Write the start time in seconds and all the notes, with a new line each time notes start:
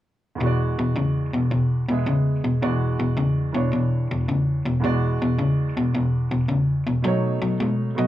0.35 E2 E3
0.41 E2 B2 G#3 F#4
0.46 D5
0.79 E2 B2
0.96 E2 C#3
1.33 E2 B2
1.51 E2 B2
1.89 E2 B2 G#3 B3 G#4 E5
2.06 E2 C#3
2.44 E2 B2
2.62 E2 B2 E3 G#3 F#4 D5
3.00 E2 B2
3.17 E2 C#3
3.53 E2 B2 E3 D4 C#5
3.72 E2 B2
4.11 E2 B2
4.28 E2 C#3
4.65 E2 B2
4.80 E2 E3 G#3 F#4
4.85 B2 D5
5.22 E2 B2
5.39 E2 C#3
5.77 E2 B2
5.95 E2 B2
6.31 E2 B2
6.48 E2 C#3
6.87 E2 B2
7.02 B2 F#3 A3 D#4
7.07 C#5
7.42 B2 F#3
7.60 B2 G#3
7.95 B2 F#3 A3 B3 F#4 D#5